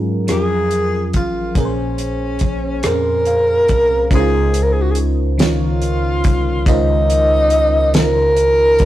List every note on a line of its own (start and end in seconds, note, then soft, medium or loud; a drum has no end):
0.00 0.25 G#2 medium
0.00 0.17 F#3 medium
0.00 0.17 C#4 medium
0.00 0.18 F4 medium
0.00 0.18 G#4 medium
0.00 0.19 A#4 medium
0.27 1.14 F2 medium
0.27 1.45 F3 medium
0.27 1.45 C#4 soft
0.27 1.46 F4 medium
0.27 1.46 G#4 soft
0.27 1.47 A#4 medium
0.27 cross-stick medium
0.27 closed hi-hat medium
0.32 1.11 G#4 loud
0.71 closed hi-hat soft
1.13 1.53 A1 medium
1.13 1.61 F4 medium
1.13 kick medium
1.13 closed hi-hat soft
1.55 2.37 A#1 medium
1.55 2.72 A#2 medium
1.55 2.73 A#3 medium
1.55 2.73 C#4 medium
1.55 2.74 G#4 medium
1.55 kick loud
1.55 closed hi-hat medium
1.59 2.85 C#4 medium
1.59 1.64 A#4 medium
1.65 2.77 C5 medium
1.98 closed hi-hat medium
2.39 2.80 A#1 medium
2.39 kick medium
2.39 closed hi-hat soft
2.83 3.65 F2 medium
2.83 4.00 A#2 medium
2.83 4.01 A#3 medium
2.83 2.90 C4 soft
2.83 4.02 G#4 medium
2.83 4.02 C5 medium
2.83 cross-stick medium
2.83 closed hi-hat medium
2.87 4.09 A#4 loud
2.91 4.04 C#4 medium
3.25 3.66 F5 medium
3.25 closed hi-hat soft
3.68 4.08 C2 medium
3.68 4.08 A#5 medium
3.68 kick medium
3.68 closed hi-hat soft
4.10 6.20 C#2 medium
4.10 5.28 C#3 medium
4.10 5.28 C#4 medium
4.10 5.29 D#4 medium
4.10 4.18 E4 medium
4.10 5.29 A#4 medium
4.10 5.30 C5 medium
4.10 kick loud
4.10 closed hi-hat medium
4.15 4.64 G#4 loud
4.19 5.32 F4 medium
4.54 closed hi-hat medium
4.63 4.74 A#4 medium
4.72 4.83 G#4 medium
4.82 4.92 F#4 medium
4.91 4.98 G#4 medium
4.95 closed hi-hat soft
5.38 6.55 D#3 medium
5.38 6.56 C#4 medium
5.38 6.56 D#4 medium
5.38 6.56 F4 medium
5.38 6.57 A#4 medium
5.38 snare loud
5.38 closed hi-hat medium
5.42 6.64 F4 medium
5.42 6.57 C#5 medium
5.82 closed hi-hat medium
6.24 6.63 C2 medium
6.24 kick medium
6.24 closed hi-hat medium
6.66 8.75 C#2 loud
6.66 7.83 C#3 medium
6.66 7.83 C#4 medium
6.66 7.84 D#4 medium
6.66 7.91 D#4 loud
6.66 7.84 F4 medium
6.66 7.85 A#4 medium
6.66 7.85 C5 medium
6.66 kick loud
6.66 closed hi-hat medium
7.10 closed hi-hat medium
7.50 closed hi-hat soft
7.93 8.85 C#3 medium
7.93 8.85 C#4 medium
7.93 8.85 D#4 medium
7.93 8.85 F4 medium
7.93 8.85 A#4 loud
7.93 8.85 A#4 medium
7.93 8.85 C5 medium
7.93 snare medium
7.93 closed hi-hat medium
8.37 closed hi-hat soft
8.79 8.85 F2 medium
8.79 kick medium
8.79 closed hi-hat medium